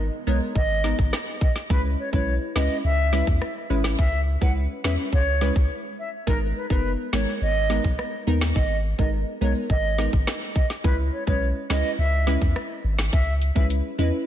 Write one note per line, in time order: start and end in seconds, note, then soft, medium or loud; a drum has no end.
0.00 0.24 G#3 medium
0.00 0.24 B3 medium
0.00 0.24 D#4 medium
0.00 0.24 A#4 medium
0.00 downlifter medium
0.27 0.40 B1 medium
0.27 0.53 G#3 medium
0.27 0.53 B3 medium
0.27 0.54 D#4 medium
0.27 0.54 A#4 medium
0.27 0.38 C#5 medium
0.55 0.94 G#1 loud
0.55 0.96 D#5 loud
0.55 kick medium
0.84 0.99 G#3 medium
0.84 0.99 B3 medium
0.84 0.99 D#4 medium
0.84 0.99 A#4 medium
0.84 snare medium
0.99 1.11 G#1 loud
0.99 kick medium
1.13 cross-stick medium
1.13 snare loud
1.41 1.52 D#5 medium
1.41 kick loud
1.56 snare medium
1.70 1.95 C#2 loud
1.70 2.09 G#3 loud
1.70 2.09 C#4 medium
1.70 2.10 E4 medium
1.70 1.81 B4 loud
1.70 2.10 B4 loud
1.70 kick loud
1.99 2.09 C#5 medium
2.13 2.38 B1 medium
2.13 2.52 G#3 medium
2.13 2.52 C#4 medium
2.13 2.52 E4 medium
2.13 2.53 B4 medium
2.13 2.34 C#5 medium
2.13 kick medium
2.56 2.68 C#2 medium
2.56 2.82 G#3 medium
2.56 2.82 C#4 medium
2.56 2.82 E4 medium
2.56 2.82 B4 medium
2.56 2.77 D#5 medium
2.56 snare loud
2.84 3.22 C#2 loud
2.84 3.25 E5 loud
3.13 3.27 G#3 medium
3.13 3.28 C#4 medium
3.13 3.28 E4 medium
3.13 3.28 B4 medium
3.13 snare medium
3.27 3.40 E2 medium
3.27 kick medium
3.42 cross-stick medium
3.70 3.95 G#1 medium
3.70 3.96 G#3 medium
3.70 3.96 C#4 medium
3.70 3.96 E4 medium
3.70 3.97 B4 medium
3.84 snare loud
3.99 4.37 C#2 loud
3.99 4.20 E5 loud
3.99 kick loud
4.41 4.67 C#2 loud
4.41 4.81 G#3 medium
4.41 4.81 C#4 medium
4.41 4.81 E4 medium
4.41 4.81 B4 medium
4.41 4.52 F#5 medium
4.41 kick medium
4.84 4.97 E2 medium
4.84 5.10 G#3 medium
4.84 5.11 C#4 medium
4.84 5.11 E4 medium
4.84 5.11 B4 medium
4.84 4.95 E5 medium
4.84 snare loud
5.13 5.51 C#2 loud
5.13 5.53 C#5 loud
5.13 kick medium
5.41 5.56 G#3 medium
5.41 5.56 C#4 medium
5.41 5.56 E4 medium
5.41 5.56 B4 medium
5.41 snare medium
5.56 5.69 C#2 medium
5.56 kick medium
5.99 6.09 E5 medium
6.27 6.53 G#1 loud
6.27 6.66 G#3 medium
6.27 6.67 B3 medium
6.27 6.67 D#4 medium
6.27 6.38 A#4 loud
6.27 6.67 A#4 loud
6.27 kick loud
6.56 6.66 B4 medium
6.70 6.96 F#1 medium
6.70 7.09 G#3 medium
6.70 7.10 B3 medium
6.70 7.10 D#4 medium
6.70 7.10 A#4 medium
6.70 6.91 B4 medium
6.70 kick medium
7.13 7.26 G#1 loud
7.13 7.39 G#3 medium
7.13 7.39 B3 medium
7.13 7.39 D#4 medium
7.13 7.39 A#4 medium
7.13 7.34 C#5 medium
7.13 snare loud
7.41 7.80 G#1 loud
7.41 7.82 D#5 loud
7.70 7.84 G#3 medium
7.70 7.85 B3 medium
7.70 7.85 D#4 medium
7.70 7.85 A#4 medium
7.70 snare medium
7.84 7.97 B1 medium
7.84 kick medium
7.99 cross-stick medium
8.27 8.53 D#2 loud
8.27 8.42 G#3 medium
8.27 8.42 B3 medium
8.27 8.42 D#4 medium
8.27 8.42 A#4 medium
8.41 snare loud
8.56 8.94 G#1 loud
8.56 8.77 D#5 medium
8.56 kick loud
8.98 9.24 G#1 medium
8.98 9.38 G#3 medium
8.98 9.38 B3 medium
8.98 9.38 D#4 medium
8.98 9.38 A#4 medium
8.98 9.09 D#5 medium
8.98 kick medium
9.41 9.54 B1 medium
9.41 9.68 G#3 medium
9.41 9.68 B3 medium
9.41 9.68 D#4 medium
9.41 9.68 A#4 medium
9.41 9.52 C#5 medium
9.70 10.08 G#1 loud
9.70 10.10 D#5 loud
9.70 kick medium
9.98 10.13 G#3 medium
9.98 10.13 B3 medium
9.98 10.13 D#4 medium
9.98 10.13 A#4 medium
9.98 snare medium
10.13 10.26 G#1 loud
10.13 kick medium
10.27 cross-stick medium
10.27 snare loud
10.56 10.66 D#5 medium
10.56 kick loud
10.70 snare medium
10.84 11.10 C#2 loud
10.84 11.24 G#3 medium
10.84 11.24 C#4 medium
10.84 11.24 E4 medium
10.84 10.95 B4 loud
10.84 11.24 B4 loud
10.84 kick loud
11.13 11.23 C#5 medium
11.27 11.53 B1 medium
11.27 11.66 G#3 medium
11.27 11.67 C#4 medium
11.27 11.67 E4 medium
11.27 11.67 B4 medium
11.27 11.48 C#5 medium
11.27 kick medium
11.70 11.83 C#2 medium
11.70 11.96 G#3 medium
11.70 11.96 C#4 medium
11.70 11.96 E4 medium
11.70 11.96 B4 medium
11.70 11.91 D#5 medium
11.70 snare loud
11.99 12.37 C#2 loud
11.99 12.39 E5 loud
12.27 12.42 G#3 medium
12.27 12.42 C#4 medium
12.27 12.42 E4 medium
12.27 12.42 B4 medium
12.27 snare medium
12.42 12.54 E2 medium
12.42 kick medium
12.56 cross-stick medium
12.84 13.10 G#1 medium
12.99 snare loud
13.13 13.51 C#2 loud
13.13 13.34 E5 loud
13.13 kick loud
13.13 closed hi-hat medium
13.42 closed hi-hat medium
13.55 13.81 C#2 medium
13.55 13.95 G#3 medium
13.55 13.95 C#4 medium
13.55 13.95 E4 medium
13.55 13.95 B4 medium
13.55 13.66 E5 medium
13.55 kick medium
13.70 closed hi-hat medium
13.98 14.11 E2 medium
13.98 14.25 G#3 medium
13.98 14.25 C#4 medium
13.98 14.25 E4 medium
13.98 14.25 B4 medium
13.98 14.09 D#5 medium
13.98 closed hi-hat medium